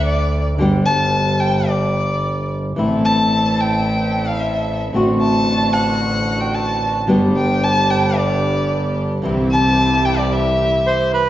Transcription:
Already playing: double bass D2, nylon-string guitar D3 A3 D4 F#4
0.06 violin D5
0.58 double bass G1, nylon-string guitar D3 G3 B3 D4 G4
0.86 violin A5
1.40 violin G5
1.68 violin D5
2.76 double bass A1, nylon-string guitar E3 A3 C4 E4, string section C4 E4 A4
3.05 violin A5
3.61 violin G5
4.28 violin F5
4.40 violin E5
4.92 double bass A1, nylon-string guitar D3 A3 C4 F#4, string section C4 D4 F#4
5.21 violin A5
5.74 violin F#5
6.41 violin G5
6.55 violin A5
7.07 double bass G1, nylon-string guitar D3 G3 B3 D4 G4, string section B3 D4 G4
7.37 violin G5
7.64 violin A5
7.91 violin G5
8.17 violin D5
9.22 double bass C2, nylon-string guitar C3 E3 G3 C4 E4, string section C4 E4 G4
9.52 violin A5
10.05 violin G5
10.18 violin D5
10.32 violin E5
10.87 bandoneon C5
11.14 bandoneon B4

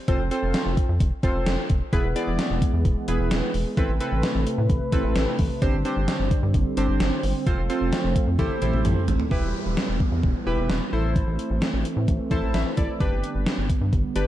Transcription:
0.08 analog synth bass F1, synth keys C4 F4 A4 C5, kick, closed hi-hat
0.20 analog synth bass F1
0.31 synth keys C4 F4 A4 C5, closed hi-hat
0.43 analog synth bass F1
0.54 snare, closed hi-hat
0.66 analog synth bass F1
0.77 kick, closed hi-hat
0.89 analog synth bass F2
1.00 analog synth bass F1, kick, closed hi-hat
1.23 analog synth bass F1, synth keys C4 F4 A4 C5, kick, closed hi-hat
1.35 analog synth bass F1
1.46 analog synth bass F1, snare, closed hi-hat
1.70 analog synth bass F1, kick, closed hi-hat
1.93 analog synth bass E1, analog synth pad E3 G#3 B3, synth keys B3 E4 G#4 B4, kick, closed hi-hat
2.04 analog synth bass E1
2.16 synth keys B3 E4 G#4 D5, closed hi-hat
2.27 analog synth bass E1
2.39 snare, closed hi-hat
2.50 analog synth bass E1
2.62 kick, closed hi-hat
2.73 analog synth bass E2
2.85 analog synth bass E1, kick, closed hi-hat
3.08 analog synth bass E1, synth keys B3 E4 G#4 B4, closed hi-hat
3.20 analog synth bass E1
3.31 analog synth bass E1, snare, closed hi-hat
3.54 analog synth bass E1, open hi-hat
3.77 analog synth bass A1, analog synth pad C3 A3 B4, synth keys C4 E4 A4 B4, kick, closed hi-hat
3.89 analog synth bass A1
4.00 synth keys C4 E4 A4 B4, closed hi-hat
4.12 analog synth bass A1
4.23 snare, closed hi-hat
4.35 analog synth bass A1
4.47 closed hi-hat
4.58 analog synth bass A2
4.70 analog synth bass A1, kick, closed hi-hat
4.92 analog synth bass A1, synth keys C4 E4 A4 B4, kick, closed hi-hat
5.04 analog synth bass A1
5.16 analog synth bass A1, snare, closed hi-hat
5.39 analog synth bass A1, kick, open hi-hat
5.62 analog synth bass G1, analog synth pad D3 G3 C4, synth keys C4 D4 G4 C5, kick, closed hi-hat
5.73 analog synth bass G1
5.85 synth keys C4 D4 G4 C5, closed hi-hat
5.97 analog synth bass G1
6.08 snare, closed hi-hat
6.20 analog synth bass G1
6.31 kick, closed hi-hat
6.43 analog synth bass G2
6.54 analog synth bass G1, kick, closed hi-hat
6.77 analog synth bass G1, synth keys C4 D4 G4 C5, closed hi-hat
6.89 analog synth bass G1
7.00 analog synth bass G1, snare, closed hi-hat
7.23 analog synth bass G1, open hi-hat
7.47 analog synth bass F1, analog synth pad F3 A3, synth keys C4 F4 A4 C5, kick, closed hi-hat
7.58 analog synth bass F1
7.70 synth keys C4 F4 A4 C5, closed hi-hat
7.81 analog synth bass F1
7.93 snare, closed hi-hat
8.04 analog synth bass F1
8.16 kick, closed hi-hat
8.27 analog synth bass F2
8.39 analog synth bass A1, analog synth pad G3 C4, synth keys E4 G4 A4 C5, kick, closed hi-hat, high tom
8.62 analog synth bass A1, synth keys E4 G4 A4 C5, closed hi-hat, mid tom
8.73 analog synth bass A1, mid tom
8.85 analog synth bass A1, closed hi-hat, mid tom
9.08 analog synth bass A1, closed hi-hat, floor tom
9.20 floor tom
9.31 analog synth bass E1, analog synth pad E3 G3 B3, synth keys E4 G4 B4, kick, downlifter
9.43 analog synth bass E1
9.66 analog synth bass E1
9.77 snare
9.89 analog synth bass E1
10.00 kick
10.12 analog synth bass E2
10.23 analog synth bass E1, kick
10.47 analog synth bass E1, synth keys E4 G4 B4
10.58 analog synth bass E1
10.70 analog synth bass E1, snare
10.93 analog synth bass A1, analog synth pad E3 A3 C4, synth keys E4 A4 C5
11.16 kick, closed hi-hat
11.27 analog synth bass A1
11.39 closed hi-hat
11.50 analog synth bass A1
11.62 snare, closed hi-hat
11.73 analog synth bass A1
11.85 closed hi-hat
11.97 analog synth bass A2
12.08 analog synth bass A1, kick, closed hi-hat
12.31 analog synth bass A1, synth keys E4 A4 C5 A5, kick, closed hi-hat
12.43 analog synth bass A1
12.54 analog synth bass A1, synth keys E5, snare, closed hi-hat
12.77 analog synth bass A1, synth keys E4 A4 D5, kick, closed hi-hat
13.00 analog synth bass G1, analog synth pad D3 G3 B3, synth keys D4 G4 B4, kick, closed hi-hat
13.12 analog synth bass G1
13.24 closed hi-hat
13.35 analog synth bass G1
13.46 snare, closed hi-hat
13.58 analog synth bass G1
13.70 kick, closed hi-hat
13.81 analog synth bass G2
13.93 analog synth bass G1, kick, closed hi-hat
14.16 analog synth bass G1, synth keys D4 G4 B4, closed hi-hat

